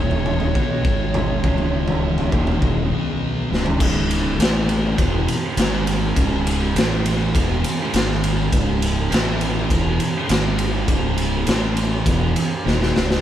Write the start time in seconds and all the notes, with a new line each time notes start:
Already playing: D#1 D#2 A#2 D#3 C#5
0.00 D#5
0.11 floor tom
0.26 floor tom, mid tom
0.40 floor tom
0.55 B1 B2 F#3 B3, kick
0.84 G#1 G#2 D#3 G#3, kick
1.14 floor tom, mid tom
1.44 C#1 C#2 G#2 C#3 C#4 G#4 D#5, kick, floor tom
1.58 floor tom
1.88 floor tom
2.18 floor tom
2.32 D#1 D#2 A#2 D#3, kick, floor tom, mid tom
2.47 floor tom
2.62 E1 E2 B2 E3, kick, floor tom, mid tom
2.90 B1 B2 F#3 B3
3.50 C#1 C#2 G#2 C#3, snare
3.66 floor tom
3.80 C#1 C#2 G#2 C#3, kick, crash
4.11 ride
4.38 A1 A2 E3 A3, ride
4.42 snare
4.69 ride
4.97 E1 E2 B2 E3, kick, ride
5.02 E3
5.28 ride
5.57 G#1 G#2 D#3 G#3, snare, ride
5.87 ride
6.16 C#1 C#2 G#2 C#3, kick, ride
6.47 ride
6.75 A1 A2 E3 A3, snare, ride
7.06 ride
7.34 E1 E2 B2 E3, kick, ride
7.64 ride
7.94 G#1 G#2 D#3 G#3, snare, ride
8.11 snare
8.24 ride
8.52 C#1 C#2 G#2 C#3, kick, ride
8.82 ride
9.11 A1 A2 E3 A3, snare, ride
9.41 ride
9.70 E1 E2 B2 E3, kick, ride
10.00 ride
10.29 G#1 G#2 D#3 G#3, snare, ride
10.59 ride
10.88 C#1 C#2 G#2 C#3, kick, ride
11.18 ride
11.47 A1 A2 E3 A3, snare, ride
11.77 ride
12.06 E1 E2 B2 E3 C#4 G#4 D#5, kick, ride
12.36 ride
12.65 D#1 D#2 A#2 D#3, snare
12.82 snare
12.95 C#1 C#2 G#2 C#3, snare
13.11 snare